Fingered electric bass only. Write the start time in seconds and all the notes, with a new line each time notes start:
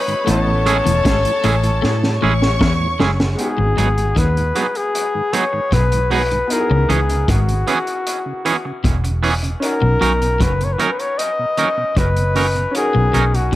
0.29 A1
0.86 E1
1.06 G#1
1.45 A1
1.84 A2
2.23 A1
2.61 E2
3.00 F#1
3.59 G#1
3.78 G#1
4.17 D#2
5.73 B1
6.71 C#2
6.90 C#2
7.29 G#1
8.85 E1
9.83 B1
10.02 B1
10.41 F#1
11.97 F#1
12.96 B1
13.15 B1